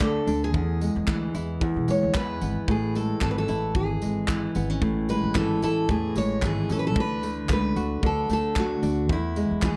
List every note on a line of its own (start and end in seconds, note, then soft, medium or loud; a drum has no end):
0.00 0.17 D2 medium
0.00 0.60 D3 medium
0.00 0.60 A3 medium
0.00 0.60 F#4 medium
0.00 0.44 A4 medium
0.00 kick loud
0.00 clap loud
0.27 0.54 D2 loud
0.27 0.60 D4 medium
0.27 tambourine medium
0.44 1.85 G#4 medium
0.54 0.88 E2 loud
0.54 1.61 E2 medium
0.54 kick loud
0.81 1.87 G#3 medium
0.81 tambourine medium
0.96 1.06 E2 loud
1.08 1.29 D2 medium
1.08 2.15 E3 medium
1.08 kick loud
1.08 clap loud
1.34 1.56 E2 medium
1.34 3.48 E4 medium
1.34 tambourine medium
1.61 2.68 E2 medium
1.61 kick loud
1.76 1.86 B2 medium
1.88 2.00 E2 medium
1.88 2.95 G#3 medium
1.88 2.16 C#5 medium
1.88 tambourine medium
2.03 2.13 D2 medium
2.14 2.37 E2 loud
2.14 3.21 E3 medium
2.14 2.71 B4 medium
2.14 kick loud
2.14 clap loud
2.41 2.54 G#1 medium
2.41 2.74 B3 medium
2.41 tambourine medium
2.68 3.12 A1 loud
2.68 3.75 A2 medium
2.68 2.94 G#4 medium
2.68 kick loud
2.95 4.01 G#3 medium
2.95 3.21 A4 medium
2.95 tambourine medium
3.21 3.43 G#1 medium
3.21 4.28 E3 medium
3.21 3.30 A4 medium
3.21 kick loud
3.21 clap loud
3.31 3.38 B4 medium
3.38 3.76 A4 medium
3.48 3.70 A1 medium
3.48 5.62 E4 medium
3.48 tambourine medium
3.75 3.97 G#1 loud
3.75 4.25 G#4 medium
3.75 kick loud
4.02 4.46 G#1 medium
4.02 5.08 G#3 medium
4.02 tambourine medium
4.28 5.34 E3 medium
4.28 kick loud
4.28 clap loud
4.55 4.77 G#1 medium
4.55 4.70 B3 medium
4.55 tambourine medium
4.70 6.69 C#4 medium
4.82 5.16 A1 loud
4.82 5.88 A2 medium
4.82 kick loud
5.09 6.15 G#3 medium
5.09 5.34 B4 loud
5.09 tambourine medium
5.24 5.33 A1 medium
5.35 5.57 G#1 medium
5.35 6.42 E3 medium
5.35 5.61 A4 loud
5.35 kick loud
5.35 clap loud
5.62 5.84 A1 medium
5.62 7.02 E4 medium
5.62 5.90 A4 loud
5.62 tambourine medium
5.89 6.11 E2 medium
5.89 7.02 A2 medium
5.89 6.17 G#4 medium
5.89 kick loud
6.15 6.38 A1 medium
6.15 7.02 G#3 medium
6.15 6.44 C#5 loud
6.15 tambourine medium
6.42 6.64 G#1 loud
6.42 6.96 E3 medium
6.42 6.71 G#4 loud
6.42 kick loud
6.42 clap loud
6.69 6.96 A1 loud
6.69 7.02 C#4 medium
6.69 6.78 A4 loud
6.69 tambourine medium
6.79 6.85 B4 medium
6.87 6.98 A4 loud
6.96 7.40 D2 loud
6.96 8.02 D3 medium
6.96 kick loud
7.00 7.48 B4 loud
7.23 7.48 A3 medium
7.23 tambourine medium
7.49 7.71 C#2 loud
7.49 8.29 A3 medium
7.49 8.06 B4 loud
7.49 kick loud
7.49 clap loud
7.76 7.98 D2 medium
7.76 9.15 F#4 medium
7.76 tambourine medium
8.03 8.25 D2 medium
8.03 9.15 D3 medium
8.03 8.32 A4 medium
8.03 kick loud
8.30 8.73 D2 medium
8.30 8.55 A3 medium
8.30 8.59 A4 loud
8.30 tambourine medium
8.56 9.15 A3 medium
8.56 9.12 F#4 loud
8.56 kick loud
8.56 clap loud
8.83 9.09 D2 loud
8.83 9.15 D4 medium
8.83 tambourine medium
9.09 9.43 E2 loud
9.09 9.77 E2 medium
9.09 9.66 E4 medium
9.09 kick loud
9.36 9.77 G#3 medium
9.36 tambourine medium
9.51 9.61 E2 medium
9.62 9.77 D2 loud
9.62 9.77 E3 medium
9.62 9.77 G#4 medium
9.62 kick loud
9.62 clap loud